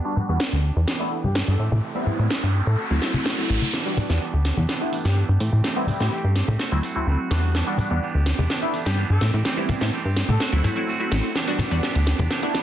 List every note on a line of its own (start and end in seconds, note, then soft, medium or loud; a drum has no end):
0.00 0.64 B3 medium
0.00 0.64 D4 medium
0.00 0.63 G4 medium
0.00 riser medium
0.05 0.15 G3 medium
0.05 0.15 B3 medium
0.05 0.15 D4 medium
0.05 0.15 F#4 loud
0.16 0.26 G3 medium
0.16 0.26 B3 medium
0.16 0.26 D4 medium
0.16 0.26 F#4 medium
0.16 low conga medium
0.16 shaker medium
0.28 0.38 E2 medium
0.28 0.38 G3 medium
0.28 0.38 B3 medium
0.28 0.39 D4 medium
0.28 0.39 F#4 loud
0.28 shaker soft
0.40 snare loud
0.53 0.71 D2 medium
0.63 0.88 D4 soft
0.63 0.87 G4 medium
0.76 0.85 E2 medium
0.87 1.33 E3 medium
0.87 1.35 B3 medium
0.87 1.36 D4 medium
0.87 1.36 G4 medium
0.87 snare medium
1.00 1.16 A3 medium
1.00 1.16 B3 medium
1.00 1.16 D4 medium
1.00 1.16 E4 loud
1.24 1.43 G2 medium
1.24 1.39 G4 medium
1.24 high conga medium
1.24 shaker soft
1.35 1.59 E3 medium
1.35 1.59 B3 medium
1.35 1.59 D4 medium
1.35 1.57 G4 medium
1.35 snare loud
1.48 1.57 G2 medium
1.48 1.64 A4 medium
1.58 1.69 A2 medium
1.58 2.55 A3 medium
1.58 2.54 C4 medium
1.58 2.52 G4 medium
1.62 2.56 E3 medium
1.72 1.81 A2 medium
1.72 high conga medium
1.72 shaker soft
1.83 shaker soft
1.95 2.05 G3 medium
1.95 2.05 B3 medium
1.95 2.05 C4 medium
1.95 2.05 E4 loud
2.06 2.17 G3 medium
2.06 2.17 B3 medium
2.06 2.17 C4 medium
2.06 2.17 E4 medium
2.06 low conga medium
2.06 shaker medium
2.19 2.28 A2 loud
2.19 2.29 G3 medium
2.19 2.29 B3 medium
2.19 2.29 C4 medium
2.19 2.29 E4 medium
2.31 snare loud
2.43 2.62 G2 medium
2.54 2.76 A3 soft
2.54 2.78 C4 medium
2.54 2.78 G4 medium
2.67 2.76 A2 medium
2.67 2.83 A4 medium
2.77 3.24 A3 medium
2.77 3.25 C4 medium
2.77 3.27 F#4 medium
2.90 3.00 D2 medium
2.90 3.00 F#3 medium
2.90 3.00 A3 medium
2.90 3.00 C4 medium
2.90 3.00 E4 loud
3.02 3.12 F#3 medium
3.02 3.12 A3 medium
3.02 3.13 C4 medium
3.02 3.13 E4 medium
3.02 snare medium
3.14 3.30 F#3 medium
3.14 3.30 A3 medium
3.14 3.30 C4 medium
3.14 3.31 E4 medium
3.14 high conga medium
3.14 shaker soft
3.25 3.73 A3 medium
3.25 3.74 C4 medium
3.25 3.74 F#4 medium
3.25 snare loud
3.25 shaker soft
3.38 3.48 F#3 medium
3.38 3.48 A3 medium
3.38 3.48 C4 medium
3.38 3.48 E4 medium
3.49 3.59 A1 medium
3.49 3.66 F#3 medium
3.49 3.66 A3 medium
3.49 3.66 C4 medium
3.49 3.66 E4 medium
3.62 high conga medium
3.62 shaker soft
3.73 3.95 E3 medium
3.73 3.96 B3 medium
3.73 3.97 D4 medium
3.73 3.98 G4 medium
3.73 snare soft
3.85 3.95 G3 loud
3.85 3.95 B3 medium
3.85 3.96 D4 medium
3.85 3.96 F#4 loud
3.96 4.09 E3 medium
3.96 4.06 G3 medium
3.96 4.07 B3 medium
3.96 4.10 B3 medium
3.96 4.07 D4 medium
3.96 4.09 D4 medium
3.96 4.07 F#4 medium
3.96 4.08 G4 medium
3.96 open hi-hat loud
3.96 high conga medium
3.96 low conga medium
3.96 shaker medium
4.09 4.19 E2 medium
4.09 4.19 G3 medium
4.09 4.19 B3 medium
4.09 4.20 B3 soft
4.09 4.19 D4 medium
4.09 4.21 D4 medium
4.09 4.20 F#4 loud
4.09 4.21 G4 medium
4.09 snare soft
4.20 4.33 E3 medium
4.20 4.34 B3 medium
4.20 4.33 D4 medium
4.20 4.31 G4 medium
4.33 4.52 D2 medium
4.33 4.58 B3 soft
4.33 4.57 D4 medium
4.33 4.55 G4 medium
4.45 snare soft
4.45 open hi-hat loud
4.56 4.66 E2 medium
4.56 4.68 B3 soft
4.56 4.68 D4 medium
4.56 4.68 G4 medium
4.56 high conga medium
4.56 shaker soft
4.68 4.81 E3 medium
4.68 4.81 B3 medium
4.68 4.81 D4 medium
4.68 4.79 G4 medium
4.68 snare soft
4.80 4.97 A3 medium
4.80 4.97 B3 medium
4.80 4.92 B3 medium
4.80 4.97 D4 medium
4.80 4.93 D4 medium
4.80 4.97 E4 loud
4.80 4.92 G4 medium
4.92 5.05 E3 medium
4.92 5.05 B3 medium
4.92 5.05 D4 medium
4.92 5.03 G4 medium
4.92 open hi-hat loud
5.04 5.24 G2 medium
5.04 5.16 B3 soft
5.04 5.16 D4 medium
5.04 5.16 G4 medium
5.04 5.20 G4 medium
5.04 snare soft
5.16 5.29 E3 medium
5.16 5.29 B3 medium
5.16 5.28 D4 medium
5.16 5.27 G4 medium
5.28 5.38 G2 medium
5.28 5.40 B3 soft
5.28 5.41 D4 soft
5.28 5.40 G4 medium
5.39 5.50 A2 medium
5.39 5.62 E3 medium
5.39 5.63 A3 medium
5.39 5.64 C4 medium
5.39 5.64 G4 medium
5.39 open hi-hat loud
5.53 5.62 A2 medium
5.64 5.86 E3 medium
5.64 5.87 A3 medium
5.64 5.88 C4 loud
5.64 5.89 G4 medium
5.64 snare soft
5.76 5.86 G3 medium
5.76 5.86 B3 medium
5.76 5.86 C4 medium
5.76 5.86 E4 loud
5.87 6.00 E3 medium
5.87 5.98 G3 medium
5.87 6.00 A3 medium
5.87 5.98 B3 medium
5.87 5.98 C4 medium
5.87 6.00 C4 medium
5.87 5.99 E4 loud
5.87 5.98 G4 medium
5.87 open hi-hat loud
5.87 high conga loud
5.87 low conga medium
5.87 shaker medium
5.99 6.09 A2 medium
5.99 6.10 G3 medium
5.99 6.11 A3 medium
5.99 6.10 B3 medium
5.99 6.10 C4 medium
5.99 6.11 C4 medium
5.99 6.10 E4 medium
5.99 6.11 G4 medium
5.99 6.48 G4 medium
5.99 snare soft
6.11 6.24 E3 medium
6.11 6.24 A3 medium
6.11 6.24 C4 medium
6.11 6.22 G4 medium
6.23 6.43 G2 medium
6.23 6.49 A3 medium
6.23 6.48 C4 medium
6.23 6.46 G4 medium
6.36 snare medium
6.36 open hi-hat loud
6.47 6.57 A2 medium
6.47 6.57 A3 soft
6.47 6.58 C4 medium
6.47 6.59 G4 medium
6.47 high conga medium
6.47 shaker medium
6.59 6.71 A3 medium
6.59 6.72 C4 medium
6.59 6.70 F#4 loud
6.59 snare medium
6.59 shaker soft
6.71 6.81 D2 medium
6.71 6.81 F#3 medium
6.71 6.81 A3 medium
6.71 6.81 C4 medium
6.71 6.83 C4 soft
6.71 6.82 E4 loud
6.71 6.83 F#4 medium
6.82 6.95 A3 medium
6.82 6.96 C4 medium
6.82 6.94 F#4 medium
6.82 open hi-hat loud
6.95 7.05 D2 soft
6.95 7.28 F#3 medium
6.95 7.28 A3 medium
6.95 7.28 C4 medium
6.95 7.06 C4 medium
6.95 7.28 E4 medium
6.95 7.07 F#4 medium
7.06 7.17 D2 medium
7.06 7.19 A3 medium
7.06 7.20 C4 medium
7.06 7.17 F#4 medium
7.06 shaker soft
7.18 7.30 C4 soft
7.18 7.30 F#4 medium
7.30 7.63 E2 medium
7.30 7.64 G3 medium
7.30 7.54 A3 medium
7.30 7.64 B3 medium
7.30 7.55 C4 medium
7.30 7.64 D4 medium
7.30 7.64 F#4 medium
7.30 7.56 F#4 medium
7.30 snare medium
7.30 open hi-hat loud
7.54 7.76 E3 medium
7.54 7.78 B3 medium
7.54 7.78 D4 loud
7.54 7.79 G4 medium
7.54 snare medium
7.67 7.76 G3 loud
7.67 7.77 B3 medium
7.67 7.77 D4 medium
7.67 7.77 F#4 loud
7.78 7.90 E3 medium
7.78 7.88 G3 medium
7.78 7.88 B3 medium
7.78 7.91 B3 medium
7.78 7.88 D4 medium
7.78 7.90 D4 medium
7.78 7.88 F#4 medium
7.78 7.89 G4 medium
7.78 open hi-hat loud
7.78 high conga medium
7.78 low conga medium
7.78 shaker medium
7.90 8.00 E2 loud
7.90 8.00 G3 loud
7.90 8.00 B3 medium
7.90 8.01 B3 medium
7.90 8.01 D4 medium
7.90 8.02 D4 medium
7.90 8.01 F#4 loud
7.90 8.02 G4 medium
7.90 shaker medium
8.02 8.14 E3 medium
8.02 8.15 B3 loud
8.02 8.14 D4 medium
8.02 8.13 G4 loud
8.02 shaker soft
8.14 8.33 D2 medium
8.14 8.39 B3 medium
8.14 8.38 D4 medium
8.14 8.37 G4 medium
8.26 snare medium
8.26 open hi-hat loud
8.38 8.47 E2 medium
8.38 8.49 B3 medium
8.38 8.50 D4 medium
8.38 8.49 G4 medium
8.38 high conga medium
8.38 shaker soft
8.49 8.62 E3 medium
8.49 8.62 B3 medium
8.49 8.62 D4 medium
8.49 8.60 G4 loud
8.49 snare medium
8.62 8.78 A3 medium
8.62 8.78 B3 medium
8.62 8.73 B3 medium
8.62 8.78 D4 medium
8.62 8.74 D4 medium
8.62 8.78 E4 loud
8.62 8.73 G4 medium
8.73 8.86 E3 medium
8.73 8.86 B3 medium
8.73 8.86 D4 medium
8.73 8.84 G4 medium
8.73 open hi-hat loud
8.85 9.05 G2 medium
8.85 8.96 B3 medium
8.85 8.97 D4 medium
8.85 8.97 G4 medium
8.85 9.01 G4 medium
8.85 snare medium
8.97 9.10 E3 medium
8.97 9.10 B3 loud
8.97 9.10 D4 medium
8.97 9.08 G4 loud
9.09 9.19 G2 medium
9.09 9.22 D4 soft
9.09 9.21 G4 medium
9.09 9.26 A4 medium
9.21 9.31 A2 medium
9.21 9.43 E3 medium
9.21 9.44 A3 medium
9.21 9.45 C4 medium
9.21 9.45 G4 medium
9.21 snare medium
9.21 open hi-hat loud
9.34 9.43 A2 medium
9.44 9.67 E3 medium
9.44 9.68 A3 medium
9.44 9.69 C4 medium
9.44 9.70 G4 loud
9.44 snare medium
9.57 9.67 G3 medium
9.57 9.67 B3 medium
9.57 9.67 C4 medium
9.57 9.67 E4 loud
9.68 9.81 E3 medium
9.68 9.79 G3 medium
9.68 9.81 A3 medium
9.68 9.79 B3 medium
9.68 9.79 C4 medium
9.68 9.81 C4 medium
9.68 9.79 E4 loud
9.68 9.79 G4 medium
9.68 open hi-hat loud
9.68 high conga medium
9.68 low conga medium
9.68 shaker medium
9.81 9.90 A2 loud
9.81 9.91 G3 medium
9.81 9.92 A3 medium
9.81 9.91 B3 medium
9.81 9.91 C4 medium
9.81 9.92 C4 medium
9.81 9.91 E4 medium
9.81 9.92 G4 medium
9.81 snare medium
9.92 10.05 E3 medium
9.92 10.05 A3 medium
9.92 10.05 C4 loud
9.92 10.03 G4 loud
10.04 10.24 G2 medium
10.04 10.30 A3 soft
10.04 10.28 C4 medium
10.04 10.27 G4 medium
10.17 snare medium
10.17 open hi-hat loud
10.28 10.38 A2 medium
10.28 10.38 A3 medium
10.28 10.40 C4 medium
10.28 10.40 G4 medium
10.28 10.45 A4 medium
10.28 high conga medium
10.28 shaker soft
10.40 10.52 A3 medium
10.40 10.53 C4 medium
10.40 10.51 F#4 loud
10.40 snare medium
10.52 10.62 D2 medium
10.52 10.61 F#3 medium
10.52 10.62 A3 medium
10.52 10.62 C4 medium
10.52 10.64 C4 medium
10.52 10.62 E4 loud
10.52 10.64 F#4 medium
10.63 10.74 F#3 medium
10.63 10.76 A3 medium
10.63 10.74 A3 medium
10.63 10.75 C4 medium
10.63 10.77 C4 medium
10.63 10.75 E4 medium
10.63 10.74 F#4 medium
10.63 open hi-hat loud
10.63 low conga medium
10.63 shaker medium
10.76 10.92 F#3 medium
10.76 10.92 A3 medium
10.76 10.92 C4 medium
10.76 10.87 C4 medium
10.76 10.92 E4 medium
10.76 10.87 F#4 medium
10.76 shaker soft
10.87 11.00 A3 medium
10.87 11.00 C4 medium
10.87 10.98 F#4 loud
10.87 shaker soft
10.99 11.10 F#3 medium
10.99 11.10 A3 medium
10.99 11.10 C4 medium
10.99 11.11 C4 soft
10.99 11.10 E4 medium
10.99 11.11 F#4 medium
11.11 11.21 A1 medium
11.11 11.28 F#3 medium
11.11 11.35 A3 medium
11.11 11.28 A3 medium
11.11 11.28 C4 medium
11.11 11.36 C4 medium
11.11 11.28 E4 medium
11.11 11.36 F#4 medium
11.11 snare medium
11.11 open hi-hat loud
11.24 shaker soft
11.34 11.57 E3 medium
11.34 11.58 B3 medium
11.34 11.59 D4 medium
11.34 11.60 G4 loud
11.34 snare medium
11.34 riser medium
11.34 cabasa medium
11.34 shaker soft
11.47 11.57 G3 loud
11.47 11.57 B3 medium
11.47 11.58 D4 medium
11.47 11.58 F#4 loud
11.47 closed hi-hat soft
11.47 cabasa soft
11.58 11.71 E3 medium
11.58 11.68 G3 medium
11.58 11.68 B3 medium
11.58 11.72 B3 medium
11.58 11.69 D4 medium
11.58 11.71 D4 medium
11.58 11.69 F#4 loud
11.58 11.69 G4 medium
11.58 snare medium
11.58 open hi-hat loud
11.58 high conga medium
11.58 low conga medium
11.58 shaker medium
11.71 11.81 E2 loud
11.71 11.81 G3 loud
11.71 11.81 B3 medium
11.71 11.82 B3 medium
11.71 11.81 D4 medium
11.71 11.83 D4 medium
11.71 11.81 F#4 loud
11.71 11.83 G4 medium
11.71 closed hi-hat medium
11.71 cabasa medium
11.71 shaker medium
11.82 11.95 E3 medium
11.82 11.96 B3 loud
11.82 11.95 D4 loud
11.82 11.93 G4 loud
11.82 snare medium
11.82 cabasa medium
11.94 12.14 D2 medium
11.94 12.20 B3 soft
11.94 12.19 D4 medium
11.94 12.17 G4 medium
11.94 closed hi-hat soft
11.94 cabasa soft
12.06 snare medium
12.06 open hi-hat loud
12.06 shaker medium
12.18 12.28 E2 medium
12.18 12.30 B3 medium
12.18 12.30 D4 medium
12.18 12.30 G4 medium
12.18 closed hi-hat medium
12.18 high conga medium
12.18 cabasa medium
12.18 shaker soft
12.30 12.43 E3 medium
12.30 12.43 B3 medium
12.30 12.42 D4 medium
12.30 12.41 G4 medium
12.30 snare medium
12.30 cabasa medium
12.30 shaker soft
12.42 12.59 A3 medium
12.42 12.59 B3 medium
12.42 12.53 B3 soft
12.42 12.59 D4 medium
12.42 12.54 D4 medium
12.42 12.59 E4 loud
12.42 12.54 G4 medium
12.42 closed hi-hat soft
12.42 cabasa soft
12.53 12.63 E3 medium
12.53 12.63 B3 medium
12.53 12.63 D4 medium
12.53 12.63 G4 medium
12.53 snare medium
12.53 open hi-hat loud
12.53 shaker medium